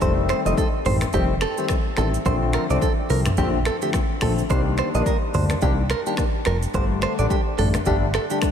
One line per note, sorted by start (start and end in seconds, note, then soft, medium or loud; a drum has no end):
0.01 0.34 F1 loud
0.01 0.42 D#3 medium
0.01 0.42 G3 medium
0.01 0.42 A3 medium
0.01 0.42 C4 loud
0.01 0.12 C5 medium
0.01 kick loud
0.01 shaker medium
0.29 0.40 C5 medium
0.29 finger snap medium
0.29 cross-stick medium
0.29 shaker soft
0.45 0.54 F1 loud
0.45 0.61 D#3 medium
0.45 0.61 G3 medium
0.45 0.61 A3 medium
0.45 0.61 C4 medium
0.45 0.53 D#5 medium
0.45 shaker medium
0.58 0.68 A4 medium
0.58 kick medium
0.58 shaker medium
0.85 1.06 A1 medium
0.85 1.04 D#3 medium
0.85 1.04 G3 medium
0.85 1.05 A3 medium
0.85 1.05 C4 medium
0.85 0.96 C5 medium
0.85 mid tom medium
0.85 open hi-hat medium
0.85 shaker medium
1.01 finger snap medium
1.01 cross-stick loud
1.01 shaker medium
1.13 1.46 F1 loud
1.13 1.33 D#3 medium
1.13 1.33 G3 medium
1.13 1.33 A3 medium
1.13 1.33 C4 loud
1.13 1.24 G4 medium
1.13 kick loud
1.13 shaker medium
1.41 1.58 A4 medium
1.41 finger snap medium
1.41 cross-stick loud
1.41 shaker medium
1.58 1.73 D#3 medium
1.58 1.74 G3 medium
1.58 1.74 A3 medium
1.58 1.74 C4 medium
1.58 1.65 G4 medium
1.58 shaker medium
1.69 finger snap medium
1.69 kick medium
1.69 cross-stick loud
1.69 shaker medium
1.97 2.18 A1 medium
1.97 2.17 D#3 medium
1.97 2.17 G3 medium
1.97 2.17 A3 medium
1.97 2.17 C4 medium
1.97 2.08 A4 medium
1.97 finger snap medium
1.97 cross-stick loud
1.97 shaker medium
2.14 shaker medium
2.25 2.58 A#1 loud
2.25 2.66 D3 loud
2.25 2.66 F3 medium
2.25 2.66 A3 medium
2.25 2.66 C4 loud
2.25 2.36 C5 medium
2.25 kick loud
2.25 shaker medium
2.53 2.64 A#4 medium
2.53 finger snap medium
2.53 cross-stick loud
2.53 shaker soft
2.70 2.79 C2 loud
2.70 2.86 D3 medium
2.70 2.86 F3 medium
2.70 2.86 A3 medium
2.70 2.86 C4 medium
2.70 2.77 D5 medium
2.70 shaker medium
2.82 2.92 A4 medium
2.82 kick loud
2.82 shaker medium
3.10 3.30 C2 medium
3.10 3.29 D3 medium
3.10 3.29 F3 medium
3.10 3.29 A3 medium
3.10 3.29 C4 medium
3.10 3.20 A#4 medium
3.10 open hi-hat medium
3.10 shaker soft
3.26 finger snap medium
3.26 cross-stick loud
3.26 mid tom loud
3.26 shaker medium
3.37 3.70 A#1 loud
3.37 3.57 D3 medium
3.37 3.57 F3 medium
3.37 3.57 A3 medium
3.37 3.57 C4 loud
3.37 3.48 G4 medium
3.37 kick loud
3.37 shaker medium
3.65 3.76 A4 medium
3.65 finger snap medium
3.65 cross-stick loud
3.65 shaker medium
3.82 3.98 D3 medium
3.82 3.98 F3 medium
3.82 3.98 A3 medium
3.82 3.98 C4 medium
3.82 3.90 G4 medium
3.82 shaker medium
3.93 finger snap medium
3.93 kick medium
3.93 cross-stick loud
3.93 shaker medium
4.21 4.42 A#1 medium
4.21 4.41 D3 medium
4.21 4.41 F3 medium
4.21 4.41 A3 medium
4.21 4.41 C4 medium
4.21 4.32 A4 medium
4.21 finger snap medium
4.21 kick medium
4.21 cross-stick loud
4.21 open hi-hat medium
4.21 shaker medium
4.38 shaker medium
4.50 4.82 C2 loud
4.50 4.90 D#3 loud
4.50 4.90 G3 medium
4.50 4.90 A#3 medium
4.50 4.91 D4 loud
4.50 4.60 C5 medium
4.50 kick loud
4.50 shaker medium
4.78 4.88 C5 medium
4.78 finger snap medium
4.78 cross-stick loud
4.78 shaker soft
4.94 5.03 A#1 medium
4.94 5.10 D#3 medium
4.94 5.10 G3 medium
4.94 5.10 A#3 medium
4.94 5.10 D4 medium
4.94 5.02 D#5 medium
4.94 shaker medium
5.06 5.16 A#4 medium
5.06 kick medium
5.06 shaker medium
5.34 5.55 D2 medium
5.34 5.53 D#3 medium
5.34 5.53 G3 medium
5.34 5.53 A#3 medium
5.34 5.53 D4 medium
5.34 5.44 C5 medium
5.34 mid tom loud
5.34 open hi-hat medium
5.34 shaker soft
5.50 finger snap medium
5.50 cross-stick loud
5.50 shaker medium
5.61 5.94 C2 loud
5.61 5.81 D#3 medium
5.61 5.81 G3 medium
5.61 5.81 A#3 medium
5.61 5.81 D4 loud
5.61 5.72 G4 medium
5.61 kick loud
5.61 shaker medium
5.90 6.00 A#4 medium
5.90 finger snap medium
5.90 cross-stick loud
5.90 shaker medium
6.06 6.22 D#3 medium
6.06 6.22 G3 medium
6.06 6.22 A#3 medium
6.06 6.22 D4 medium
6.06 6.14 G4 medium
6.06 shaker medium
6.17 finger snap medium
6.17 kick loud
6.17 cross-stick loud
6.17 shaker medium
6.45 6.67 F1 medium
6.45 6.56 A#4 medium
6.45 finger snap medium
6.45 cross-stick loud
6.45 shaker medium
6.63 shaker medium
6.74 7.06 G1 loud
6.74 7.15 D3 loud
6.74 7.15 G3 medium
6.74 7.15 A3 medium
6.74 7.15 D4 loud
6.74 6.84 C5 medium
6.74 kick loud
6.74 shaker medium
7.02 7.12 C5 medium
7.02 finger snap medium
7.02 cross-stick loud
7.02 shaker soft
7.18 7.27 A1 medium
7.18 7.34 D3 medium
7.18 7.34 G3 medium
7.18 7.34 A3 medium
7.18 7.34 D4 medium
7.18 7.26 D5 medium
7.18 shaker medium
7.30 7.40 G4 medium
7.30 kick loud
7.30 shaker medium
7.58 7.79 A1 loud
7.58 7.77 D3 medium
7.58 7.77 G3 medium
7.58 7.78 A3 medium
7.58 7.78 D4 medium
7.58 7.68 A4 medium
7.58 mid tom loud
7.58 open hi-hat medium
7.58 shaker soft
7.74 finger snap medium
7.74 cross-stick loud
7.74 shaker medium
7.86 8.19 G1 loud
7.86 8.05 D3 loud
7.86 8.06 G3 medium
7.86 8.06 A3 medium
7.86 8.06 D4 loud
7.86 7.96 G4 medium
7.86 kick loud
7.86 shaker medium
8.14 8.25 A4 medium
8.14 finger snap medium
8.14 cross-stick loud
8.14 shaker medium
8.30 8.46 D3 medium
8.30 8.47 G3 medium
8.30 8.47 A3 medium
8.30 8.47 D4 medium
8.30 8.38 G4 medium
8.30 shaker medium
8.42 finger snap medium
8.42 kick loud
8.42 cross-stick loud
8.42 shaker medium